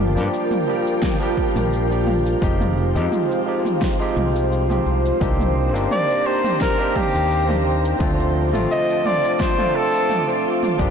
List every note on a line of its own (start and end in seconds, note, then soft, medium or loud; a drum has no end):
0.00 0.18 G1 medium
0.00 0.11 F3 medium
0.00 0.12 G3 medium
0.00 0.12 A#3 medium
0.00 0.13 D4 medium
0.00 5.17 F4 medium
0.00 0.13 G4 loud
0.00 2.39 A#4 medium
0.00 2.39 G5 medium
0.00 2.39 D6 medium
0.15 0.28 G2 medium
0.15 0.63 F3 medium
0.15 0.64 G3 medium
0.15 0.64 A#3 medium
0.15 0.64 D4 medium
0.15 0.65 G4 loud
0.15 cabasa medium
0.34 cabasa medium
0.51 mid tom medium
0.51 cabasa soft
0.66 1.16 F3 medium
0.66 1.16 G3 medium
0.66 1.17 A#3 medium
0.66 1.17 D4 medium
0.66 1.18 G4 medium
0.87 cabasa medium
1.02 kick loud
1.02 snare medium
1.02 mid tom medium
1.02 cabasa medium
1.20 1.86 F3 loud
1.20 1.86 G3 medium
1.20 1.86 A#3 medium
1.20 1.87 D4 medium
1.20 1.87 G4 loud
1.20 cabasa soft
1.37 kick medium
1.56 2.34 A#1 medium
1.56 mid tom medium
1.56 cabasa medium
1.73 cabasa medium
1.89 2.37 F3 medium
1.89 2.38 G3 medium
1.89 2.38 A#3 medium
1.89 2.39 D4 medium
1.89 2.39 G4 medium
1.89 cabasa soft
2.07 mid tom medium
2.26 cabasa medium
2.41 2.97 F1 medium
2.41 2.90 F3 medium
2.41 2.91 G#3 medium
2.41 2.91 C4 medium
2.41 2.91 D#4 medium
2.41 2.92 G4 loud
2.41 10.75 C5 medium
2.41 kick loud
2.41 cabasa medium
2.60 mid tom medium
2.60 cabasa soft
2.94 3.07 F2 medium
2.94 3.42 F3 medium
2.94 3.43 G#3 medium
2.94 3.43 C4 medium
2.94 3.43 D#4 medium
2.94 3.44 G4 loud
2.94 cabasa medium
3.12 mid tom medium
3.12 cabasa medium
3.31 cabasa soft
3.46 3.95 F3 medium
3.46 3.95 G#3 medium
3.46 3.96 C4 medium
3.46 3.96 D#4 medium
3.46 3.97 G4 medium
3.65 mid tom medium
3.65 cabasa medium
3.82 kick loud
3.82 snare medium
3.82 cabasa medium
3.99 4.65 F3 loud
3.99 4.65 G#3 medium
3.99 4.66 C4 medium
3.99 4.66 D#4 medium
3.99 4.66 G4 loud
3.99 cabasa soft
4.17 4.78 C2 medium
4.17 mid tom medium
4.36 cabasa medium
4.52 cabasa medium
4.69 5.17 F3 medium
4.69 5.17 G#3 medium
4.69 5.18 C4 medium
4.69 5.18 D#4 medium
4.69 5.18 G4 medium
4.69 mid tom medium
4.69 cabasa soft
4.86 5.11 C2 medium
5.06 cabasa medium
5.20 5.75 C2 medium
5.20 5.70 A#3 medium
5.20 5.70 C4 medium
5.20 5.70 D4 medium
5.20 5.71 D#4 medium
5.20 7.98 G4 medium
5.20 5.71 G4 loud
5.20 7.98 A#5 medium
5.20 kick loud
5.20 cabasa medium
5.40 mid tom medium
5.40 cabasa soft
5.73 5.86 G1 medium
5.73 6.21 A#3 medium
5.73 6.22 C4 medium
5.73 6.22 D4 medium
5.73 6.22 D#4 medium
5.73 6.23 G4 medium
5.73 cabasa medium
5.91 6.28 D5 loud
5.91 mid tom medium
5.91 cabasa medium
6.10 cabasa soft
6.25 6.74 A#3 medium
6.25 6.75 C4 medium
6.25 6.75 D4 medium
6.25 6.76 D#4 medium
6.25 6.76 G4 medium
6.25 6.61 C5 loud
6.44 mid tom medium
6.44 cabasa medium
6.61 6.98 A#4 medium
6.61 kick loud
6.61 snare medium
6.61 cabasa medium
6.78 7.44 A#3 medium
6.78 7.44 C4 medium
6.78 7.45 D4 medium
6.78 7.45 D#4 medium
6.78 7.45 G4 loud
6.78 cabasa soft
6.96 7.66 G4 loud
6.96 kick medium
6.96 mid tom medium
7.15 7.93 D#2 medium
7.15 cabasa medium
7.31 cabasa medium
7.47 7.96 A#3 medium
7.47 7.96 C4 medium
7.47 7.96 D4 medium
7.47 7.97 D#4 medium
7.47 7.97 G4 medium
7.47 mid tom medium
7.47 cabasa soft
7.85 cabasa medium
7.99 8.54 D2 medium
7.99 8.48 F3 loud
7.99 8.49 A3 medium
7.99 8.49 C4 medium
7.99 8.50 D4 medium
7.99 10.90 F4 medium
7.99 8.50 F4 loud
7.99 10.77 A5 medium
7.99 10.90 D6 medium
7.99 kick loud
7.99 mid tom medium
7.99 cabasa soft
8.20 cabasa soft
8.52 8.65 A1 medium
8.52 9.01 D3 medium
8.52 9.00 F3 medium
8.52 9.01 A3 medium
8.52 9.01 C4 medium
8.52 9.02 F4 loud
8.52 mid tom medium
8.52 cabasa medium
8.71 9.07 D#5 loud
8.71 cabasa medium
8.89 cabasa soft
9.04 9.53 F3 medium
9.04 9.54 A3 medium
9.04 9.54 C4 medium
9.04 9.54 D4 medium
9.04 9.55 F4 medium
9.04 9.34 D5 loud
9.04 mid tom medium
9.24 cabasa medium
9.34 9.42 D5 medium
9.40 9.77 C5 medium
9.40 kick loud
9.40 snare medium
9.40 cabasa medium
9.57 10.23 F3 medium
9.57 10.23 A3 medium
9.57 10.24 C4 medium
9.57 10.24 D4 medium
9.57 10.24 F4 loud
9.57 mid tom medium
9.57 cabasa soft
9.76 10.45 A4 medium
9.94 cabasa medium
10.10 mid tom medium
10.10 cabasa medium
10.27 10.75 F3 medium
10.27 10.75 A3 medium
10.27 10.76 C4 medium
10.27 10.76 D4 medium
10.27 10.76 F4 medium
10.27 cabasa soft
10.63 mid tom medium
10.63 cabasa medium
10.78 10.90 G1 medium
10.78 10.90 F3 loud
10.78 10.90 G3 medium
10.78 10.90 A#3 medium
10.78 10.90 D4 medium
10.78 10.90 G4 loud
10.78 10.90 A#4 medium
10.78 10.90 G5 medium
10.78 kick loud
10.78 cabasa soft